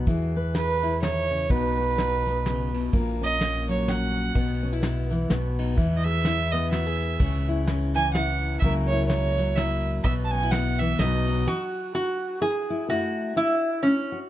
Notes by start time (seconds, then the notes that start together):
Already playing: F#4
0.07 E2 E3 G#4, kick, ride, shaker
0.21 shaker
0.36 B4
0.55 G#4 B4, snare, ride
0.82 E4, shaker
1.02 D#3 C#5, snare, ride
1.31 C#3
1.49 B1 B2 B3 D#4 F#4 B4, kick, ride, shaker
1.64 shaker
1.79 F#4
1.98 D#4, snare, ride
2.25 B3, shaker
2.46 C#3, snare, ride
2.74 B2, ride
2.93 A#1 A#2 A#3, kick, ride, shaker
3.07 shaker
3.21 C#4 D#5
3.40 A#3, snare, ride
3.68 F#3 C#5, shaker
3.88 C#4 F#5, snare, ride
4.35 B1 B2 B3, kick, ride, shaker
4.63 C#4, shaker
4.72 E4
4.83 B3, snare, ride
5.11 E3, shaker
5.21 shaker
5.30 B1 B2 B3, snare, ride
5.58 D#4, ride, shaker
5.77 E2 E3 E4, kick, ride, shaker
5.92 shaker
5.97 D#5
6.04 G#4 E5
6.25 E4, snare, ride
6.52 B3 D#5, shaker
6.71 F#4 E5, snare, ride
6.86 G#4
7.19 C#2 C#3 C#4, kick, ride, shaker
7.34 shaker
7.48 E4
7.67 C#4, snare, ride
7.95 E3 G#5, shaker
8.13 E4 F#5, snare, ride
8.43 ride
8.60 C#2 C#3 F#3 A#3 E5, kick, ride, shaker
8.64 E4 A#4
8.76 shaker
8.87 C#5
8.91 E4
9.07 A#3 C#5, snare, ride
9.37 F#3, shaker
9.56 E4 E5, snare, ride
10.04 B1 B2 B3 E5, kick, ride, shaker
10.25 A5
10.31 C#4 G#5
10.43 E4
10.51 B3 F#5, snare, ride
10.79 E3 E5, shaker
10.99 B1 B2 F#3 B3 D#4 D#5, snare, ride
11.03 F#4
11.13 shaker
11.27 D#4, ride, shaker
11.47 E3 F#4
11.94 E4 F#4
12.41 E4 G#4
12.70 E4
12.88 F#2 A3 E4 F#4
13.36 A3 E4
13.83 A3 C#4
14.12 F#4